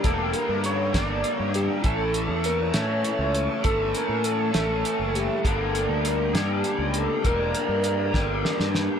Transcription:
Already playing: A#3 G5
0.03 E1 G2 D3 G3 A#3 D4 A4 E5, kick, closed hi-hat
0.07 G4
0.33 A#4, closed hi-hat
0.49 G2 A#4
0.64 C#5, closed hi-hat
0.92 G1 G2 D3 G3 A#3 D4 G4 D5, kick, snare, closed hi-hat
1.24 closed hi-hat
1.35 C#5
1.40 G2
1.54 G4, closed hi-hat
1.82 A1 A2 E3 A3 C#4 C#5 E5 A5, kick, closed hi-hat
1.86 A4
2.14 closed hi-hat
2.28 E2
2.44 A#4, closed hi-hat
2.72 A2 E3 A3 C#4 A4 C#5, snare, closed hi-hat
2.76 A2
3.05 closed hi-hat
3.19 C#2
3.35 closed hi-hat
3.62 G1 A2 E3 A3 C#4 A4, kick, closed hi-hat
3.95 A#4, closed hi-hat
4.09 A2
4.24 A4, closed hi-hat
4.52 A1 A2 E3 A3 C#4 A4, snare, closed hi-hat
4.85 closed hi-hat
4.99 F#1
5.15 G4, closed hi-hat
5.43 G1 G2 D3 G3 A#3 D4 D5 G5, kick, closed hi-hat
5.47 G4 A4
5.75 closed hi-hat
5.89 D2
6.05 A#4, closed hi-hat
6.34 G2 D3 G3 A#3 D4 G4, snare, closed hi-hat
6.64 closed hi-hat
6.78 C#2
6.94 closed hi-hat
6.98 A4
7.22 E1 G2 D3 G3 A#3 D4 G4, kick, closed hi-hat
7.26 A#4
7.54 closed hi-hat
7.69 G2
7.84 closed hi-hat
8.12 G1 G2 D3 G3 A#3 D4 G4, kick, snare
8.45 snare
8.60 G2, snare
8.75 snare

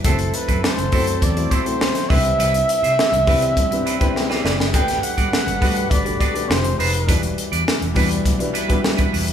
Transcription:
0.04 F#1 F#3 A3 C4 E4 F#4 A4 C5, kick, closed hi-hat
0.19 muted clean electric guitar stroke, closed hi-hat
0.34 B4, muted clean electric guitar stroke, closed hi-hat
0.48 F#2 F#3 C4 E4 B4, kick, closed hi-hat
0.64 C5, snare
0.78 F#1, muted clean electric guitar stroke, closed hi-hat
0.92 F#2 F#3 A3 C4 E4 F#4 A4 C5, kick, open hi-hat
1.07 muted clean electric guitar stroke, closed hi-hat
1.22 E2 D5, muted clean electric guitar stroke, kick, closed hi-hat
1.36 A3 C4 E4 F#4 C5, muted clean electric guitar stroke, closed hi-hat
1.51 F#3 C4 E4 A4 C5, kick, closed hi-hat
1.65 A3 C4 E4 F#4 C5, muted clean electric guitar stroke, closed hi-hat
1.81 muted clean electric guitar stroke, snare
1.95 muted clean electric guitar stroke, snare, closed hi-hat
2.09 C2 C3 G3 C4 D4 E4 G4 B4 E5, kick, open hi-hat
2.24 muted clean electric guitar stroke, closed hi-hat
2.38 C2 G3 C4 E4 B4, closed hi-hat
2.54 muted clean electric guitar stroke, closed hi-hat
2.68 muted clean electric guitar stroke, closed hi-hat
2.83 C3 G3 C4 E4 C5, closed hi-hat
2.99 snare
3.12 C2, muted clean electric guitar stroke, closed hi-hat
3.26 C3 G3 C4 D4 E4 G4 B4, kick, open hi-hat
3.42 muted clean electric guitar stroke, closed hi-hat
3.57 G2, muted clean electric guitar stroke, kick, closed hi-hat
3.71 C4 D4 E4 G4 B4, muted clean electric guitar stroke, closed hi-hat
3.86 G3 C4 E4 B4 B5, closed hi-hat
3.99 G3 C4 D4 E4 G4 B4, kick, closed hi-hat
4.14 G5, muted clean electric guitar stroke, snare
4.30 G3 C4 E4 B4, snare
4.44 F#1 G3 C4 E4 B4 D5, snare
4.59 muted clean electric guitar stroke, snare
4.73 G1 G3 A3 B3 D4 F#4 G4 A4 B4 F#5 G5, kick, closed hi-hat
4.80 B4
4.88 muted clean electric guitar stroke, snare, closed hi-hat
5.03 F#5, muted clean electric guitar stroke, closed hi-hat
5.17 G2 B3 D4 F#4 D5, kick, closed hi-hat
5.33 snare
5.46 G1, muted clean electric guitar stroke, closed hi-hat
5.61 G2 A3 B3 D4 F#4 G4 B4, kick, open hi-hat
5.75 muted clean electric guitar stroke, closed hi-hat
5.91 G1 D5, muted clean electric guitar stroke, kick, closed hi-hat
6.05 A3 D4 F#4 G4 B4, muted clean electric guitar stroke, closed hi-hat
6.20 B3 D4 F#4 B4 D5, kick, closed hi-hat
6.34 A3 D4 F#4 G4 B4, muted clean electric guitar stroke, closed hi-hat
6.48 F1 F3 G#3 C4 D#4 F4 G4 C5, muted clean electric guitar stroke, snare
6.64 muted clean electric guitar stroke, closed hi-hat
6.79 F1 G#3 D#4 F4 B4 C5, open hi-hat
6.93 muted clean electric guitar stroke, closed hi-hat
7.07 E1 E3 G3 B3 D4 E4 F#4 B4, kick, closed hi-hat
7.23 closed hi-hat
7.37 muted clean electric guitar stroke, closed hi-hat
7.52 E2 G3 D4 E4 D5, closed hi-hat
7.68 snare
7.81 E1, muted clean electric guitar stroke, closed hi-hat
7.94 E2 G3 D4 E4 F#4 B4, kick, open hi-hat
8.10 muted clean electric guitar stroke, closed hi-hat
8.25 B1, muted clean electric guitar stroke, kick, closed hi-hat
8.39 G3 D4 E4 F#4 B4, muted clean electric guitar stroke, closed hi-hat
8.53 G3 D4 E4 B4, closed hi-hat
8.68 G3 D4 E4 F#4 B4, kick, closed hi-hat
8.82 muted clean electric guitar stroke, snare
8.97 G3 D4 E4 B4, kick, closed hi-hat
9.12 E1 G3 D4 E4 B4, open hi-hat
9.27 muted clean electric guitar stroke, closed hi-hat

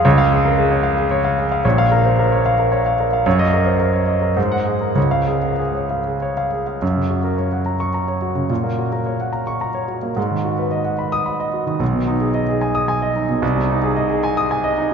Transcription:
0.05 C#2 C#5
0.18 F5
0.32 G#4
0.45 A#4
0.58 G#4
0.71 C#5
0.83 F5
0.98 G#4
1.11 C#5
1.24 F5
1.38 G#4
1.52 F5
1.65 A#1 C#5
1.78 F5
1.92 A#4
2.05 C5
2.19 A#4
2.32 C#5
2.46 F5
2.59 A#4
2.72 C#5
2.86 F5
3.00 A#4
3.13 F5
3.26 F#2 C#5
3.39 D#5
3.53 A#4
3.66 C5
3.79 A#4
3.93 C#5
4.08 D#5
4.22 A#4
4.37 G#2 C5
4.52 F#5
4.66 G#4
4.81 A#4
4.95 C#2 C#5
5.11 F5
5.28 G#4
5.43 A#4
5.59 G#4
5.75 C#5
5.91 F5
6.07 G#4
6.22 C#5
6.37 F5
6.52 G#4
6.67 F5
6.82 F#2
6.96 C#3
7.10 F#4
7.24 A#4
7.38 C#5
7.52 F#5
7.66 A#5
7.80 C#6
7.94 A#5
8.08 C#5
8.22 F#4
8.35 C#3
8.50 A#2
8.64 A#3
8.78 F#4
8.92 A#4
9.06 C#5
9.20 F#5
9.33 A#5
9.47 C#6
9.61 A#5
9.75 C#5
9.88 F#4
10.03 A#3
10.16 G#2
10.31 D#3
10.45 F#4
10.59 B4
10.71 D#5
10.85 F#5
10.99 B5
11.12 D#6
11.26 B5
11.40 D#5
11.53 F#4
11.67 D#3
11.80 B1
11.93 B2
12.07 D#4
12.21 G#4
12.34 D#5
12.49 G#4
12.61 G#5
12.75 D#6
12.88 G#5
13.02 D#5
13.16 D#4
13.29 B2
13.42 C2
13.56 C3
13.70 D#4
13.84 G#4
13.96 D#5
14.10 G#4
14.24 G#5
14.37 D#6
14.51 G#5
14.64 D#5
14.78 D#4

